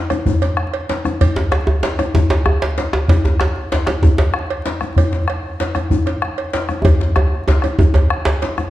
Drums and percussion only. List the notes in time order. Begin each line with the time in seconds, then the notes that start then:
0.10 bombo rim, cowbell, djembe slap, djembe tone
0.26 bombo low, djembe bass
0.42 bombo rim, cowbell, djembe slap
0.57 bombo rim
0.74 cowbell
0.89 bombo rim, cowbell, djembe slap
1.05 bombo rim, djembe slap, djembe tone
1.21 bombo low, cowbell, djembe bass
1.36 bombo rim, djembe slap
1.52 bombo rim, cowbell, djembe slap
1.67 djembe tone
1.83 cowbell, djembe slap
1.99 bombo rim, cowbell, djembe tone
2.14 bombo low, djembe slap, djembe bass
2.30 bombo rim, cowbell, djembe slap
2.46 bombo rim, djembe tone
2.62 cowbell, djembe slap
2.78 cowbell, djembe slap
2.93 bombo rim, djembe slap
3.08 bombo low, cowbell, djembe slap, djembe bass
3.24 bombo rim, djembe slap, djembe tone
3.40 bombo rim, cowbell, djembe slap
3.72 cowbell, djembe slap
3.87 bombo rim, cowbell, djembe slap, djembe tone
4.02 bombo low, djembe tone, djembe bass
4.18 bombo rim, cowbell, djembe slap
4.34 bombo rim
4.50 cowbell
4.66 cowbell, djembe slap
4.81 bombo rim, djembe tone
4.96 bombo low, cowbell, djembe bass
5.12 bombo rim, djembe slap
5.28 bombo rim, cowbell
5.60 cowbell, djembe slap
5.75 bombo rim, cowbell, djembe tone
5.90 bombo low, djembe bass
6.06 bombo rim, cowbell, djembe slap
6.22 bombo rim
6.38 cowbell
6.53 cowbell, djembe slap
6.69 bombo rim, djembe tone
6.84 bombo rim, bombo low, cowbell, djembe slap, djembe tone, djembe bass
7.00 bombo rim, djembe slap
7.16 bombo rim, cowbell, djembe tone
7.32 bombo rim
7.48 cowbell, djembe slap, djembe tone
7.62 bombo rim, cowbell, djembe tone
7.78 bombo low, djembe tone, djembe bass
7.94 cowbell, djembe slap, djembe tone
8.10 bombo rim
8.25 cowbell, djembe slap
8.27 djembe slap
8.42 cowbell, djembe slap
8.58 bombo rim, djembe tone